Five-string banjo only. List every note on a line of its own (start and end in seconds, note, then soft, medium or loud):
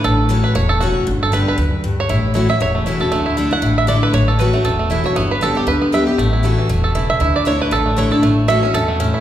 0.04 0.46 A4 loud
0.44 0.55 B4 medium
0.56 0.70 C#5 loud
0.69 0.81 A4 medium
0.80 0.94 F#4 medium
1.23 1.33 A4 medium
1.33 1.47 B4 medium
1.48 2.00 B4 medium
2.00 2.49 C#5 loud
2.10 2.35 E4 medium
2.35 2.86 E4 medium
2.50 2.61 E5 loud
2.62 2.85 C#5 loud
2.75 3.11 A3 medium
2.86 3.25 E4 medium
3.01 4.06 A4 medium
3.12 3.36 A3 medium
3.26 3.61 E4 medium
3.37 3.74 A3 medium
3.53 3.78 F#5 loud
3.62 4.00 E4 medium
3.78 3.88 E5 loud
3.88 4.03 D5 medium
4.03 4.13 B4 medium
4.14 4.40 C#5 medium
4.28 4.63 A4 medium
4.40 4.53 B4 medium
4.54 4.78 A3 medium
4.65 5.02 A4 medium
4.79 5.14 A3 medium
4.91 5.16 E4 medium
5.06 5.29 C#5 loud
5.16 5.53 B3 medium
5.31 5.43 B4 medium
5.43 5.57 A4 medium
5.57 5.68 G4 medium
5.68 5.94 B4 loud
5.82 6.16 B3 medium
5.94 6.07 E5 loud
6.07 6.18 G4 medium
6.18 6.44 A3 medium
6.33 6.95 E4 medium
6.44 6.69 A3 medium
6.58 7.39 E3 medium
6.70 7.61 A3 medium
6.84 7.65 A4 medium
6.95 7.21 E4 medium
7.10 7.35 E5 loud
7.21 7.58 E4 medium
7.36 7.47 D5 medium
7.47 7.60 C#5 medium
7.62 7.73 B4 medium
7.72 7.98 A4 loud
7.86 8.21 A3 medium
7.98 8.11 C#5 medium
8.12 8.23 A4 medium
8.23 8.60 A3 medium
8.48 8.75 E5 loud
8.63 8.97 C#4 medium
8.74 8.87 A4 medium
8.88 9.20 A3 medium
9.00 9.20 C#4 medium
9.14 9.20 E4 medium